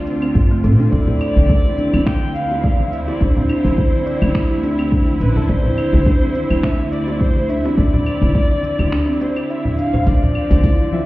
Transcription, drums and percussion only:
0.07 cabasa
0.22 cabasa, claves
0.35 kick, cabasa
0.64 cabasa
0.79 cabasa
0.92 kick, cabasa
1.07 high bongo, low conga
1.21 cabasa, claves
1.36 high bongo, high conga, cabasa
1.49 kick, cabasa
1.78 high conga, cabasa
1.93 high bongo, high conga, cabasa, claves
2.07 finger snap, kick, cabasa
2.35 cabasa
2.51 high bongo, cabasa
2.64 kick, cabasa
2.80 high conga
2.93 cabasa
3.08 high bongo, cabasa
3.21 kick, cabasa
3.37 high bongo, low conga
3.49 cabasa, claves
3.64 high bongo, high conga, cabasa
3.78 kick, cabasa
4.06 cabasa
4.22 high conga, cabasa, claves
4.35 finger snap, kick, cabasa
4.63 high bongo, cabasa
4.79 cabasa, claves
4.92 kick, cabasa
5.21 cabasa
5.36 low conga, cabasa
5.49 kick, cabasa
5.65 high bongo, low conga
5.78 cabasa, claves
5.93 high bongo, high conga, cabasa
6.06 kick, cabasa
6.35 high conga, cabasa
6.50 high bongo, high conga, cabasa, claves
6.63 finger snap, kick, cabasa
6.92 cabasa
7.08 high bongo, cabasa
7.21 kick, cabasa
7.36 high conga
7.49 cabasa
7.65 high bongo, cabasa
7.78 kick, cabasa
7.93 high bongo, low conga
8.06 cabasa, claves
8.21 high bongo, high conga, cabasa
8.35 kick, cabasa
8.63 high conga, cabasa
8.79 high bongo, high conga, cabasa, claves
8.92 finger snap, cabasa
9.21 high bongo, cabasa
9.36 cabasa, claves
9.50 cabasa
9.65 low conga
9.78 cabasa
9.94 low conga, cabasa
10.07 kick, open hi-hat, cabasa
10.22 high bongo, low conga, cabasa
10.35 claves
10.50 open hi-hat, high bongo, high conga, cabasa
10.64 kick, open hi-hat, cabasa
10.79 cabasa
10.92 high conga

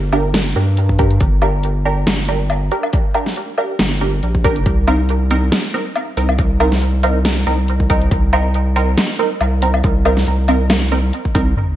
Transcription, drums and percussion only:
0.13 low woodblock
0.34 snare, closed hi-hat
0.46 closed hi-hat
0.48 closed hi-hat
0.52 closed hi-hat
0.56 closed hi-hat
0.77 closed hi-hat
0.89 kick
0.99 kick, closed hi-hat
1.11 closed hi-hat
1.20 kick, closed hi-hat
1.42 closed hi-hat, low woodblock
1.63 closed hi-hat
2.07 snare, closed hi-hat
2.18 closed hi-hat
2.21 closed hi-hat
2.25 closed hi-hat
2.28 closed hi-hat
2.50 closed hi-hat, low woodblock
2.71 closed hi-hat
2.83 low woodblock
2.93 kick, closed hi-hat
3.15 closed hi-hat, low woodblock
3.26 snare
3.36 closed hi-hat
3.58 low woodblock
3.79 snare, closed hi-hat
3.91 closed hi-hat
3.94 closed hi-hat
3.98 closed hi-hat
4.01 closed hi-hat
4.23 closed hi-hat
4.35 kick
4.44 kick, closed hi-hat
4.56 closed hi-hat
4.66 kick, closed hi-hat
4.87 closed hi-hat, low woodblock
5.09 closed hi-hat
5.31 open hi-hat
5.52 snare, closed hi-hat
5.64 closed hi-hat
5.67 closed hi-hat
5.71 closed hi-hat
5.74 closed hi-hat
5.95 closed hi-hat, low woodblock
6.17 open hi-hat
6.29 low woodblock
6.38 kick, closed hi-hat
6.60 closed hi-hat, low woodblock
6.72 snare
6.82 closed hi-hat
7.03 open hi-hat, low woodblock
7.25 snare, closed hi-hat
7.37 closed hi-hat
7.39 closed hi-hat
7.43 closed hi-hat
7.47 closed hi-hat
7.68 closed hi-hat
7.80 kick
7.90 kick, open hi-hat
8.02 closed hi-hat
8.11 kick, closed hi-hat
8.33 closed hi-hat, low woodblock
8.54 closed hi-hat
8.76 open hi-hat
8.98 snare, closed hi-hat
9.09 closed hi-hat
9.12 closed hi-hat
9.16 closed hi-hat
9.19 closed hi-hat
9.41 closed hi-hat, low woodblock
9.62 open hi-hat
9.74 low woodblock
9.84 kick, closed hi-hat
10.05 closed hi-hat, low woodblock
10.17 snare
10.27 closed hi-hat
10.48 open hi-hat, low woodblock
10.70 snare, closed hi-hat, low woodblock
10.82 closed hi-hat
10.84 closed hi-hat
10.88 closed hi-hat
10.91 closed hi-hat
11.13 closed hi-hat
11.25 kick
11.35 kick, open hi-hat

